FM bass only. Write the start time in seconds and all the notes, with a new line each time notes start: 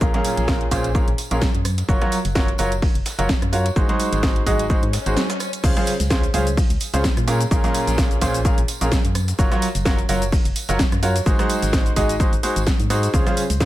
0.01 A#1
0.37 A#1
0.71 A#1
1.08 A#1
1.31 A#1
1.55 F#2
1.89 F#1
2.25 F#1
2.59 F#1
2.95 F#1
3.19 F#1
3.42 F#2
3.76 G#1
4.12 G#1
4.46 G#1
4.83 G#2
5.06 G#1
5.64 C#2
6.00 C#2
6.34 C#2
6.70 C#2
6.94 C#2
7.17 A#2
7.51 A#1
7.87 A#1
8.21 A#1
8.58 A#1
8.81 A#1
9.05 F#2
9.39 F#1
9.75 F#1
10.09 F#1
10.45 F#1
10.69 F#1
10.92 F#2
11.26 G#1
11.63 G#1
11.96 G#1
12.33 G#1
12.56 G#1
12.80 G#2
13.14 C#2
13.50 C#2